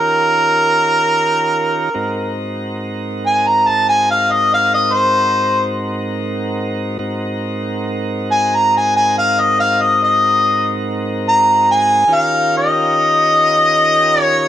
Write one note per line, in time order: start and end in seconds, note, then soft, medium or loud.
0.00 1.90 D#3 medium
0.00 1.89 C#4 medium
0.00 1.90 F4 medium
0.00 1.90 G4 medium
0.00 1.90 A#4 medium
0.00 2.35 A#4 loud
1.94 6.98 G#2 medium
1.94 6.97 C4 medium
1.94 6.98 D#4 medium
1.94 6.97 F#4 medium
1.94 6.98 A#4 medium
3.26 3.49 G#5 medium
3.47 3.69 A#5 medium
3.68 3.86 A5 medium
3.89 4.07 G#5 medium
4.11 4.33 F5 medium
4.32 4.49 D#5 medium
4.54 4.71 F5 medium
4.74 4.94 D#5 medium
4.93 5.74 C5 loud
6.99 12.05 G#2 medium
6.99 12.05 C4 medium
6.99 12.05 D#4 medium
6.99 12.04 F#4 medium
6.99 12.05 A#4 medium
8.32 8.57 G#5 medium
8.55 8.72 A#5 medium
8.77 8.94 G#5 medium
8.96 9.14 G#5 medium
9.18 9.42 F5 medium
9.40 9.57 D#5 medium
9.60 9.83 F5 medium
9.81 9.99 D#5 medium
10.04 10.83 D#5 medium
11.29 11.68 A#5 medium
11.71 12.17 G#5 medium
12.08 14.48 D#3 medium
12.08 14.48 C#4 medium
12.08 14.48 F4 medium
12.08 14.48 G4 medium
12.08 14.48 A#4 medium
12.15 12.54 F5 medium
12.57 14.22 D#5 loud
14.22 14.48 C#5 loud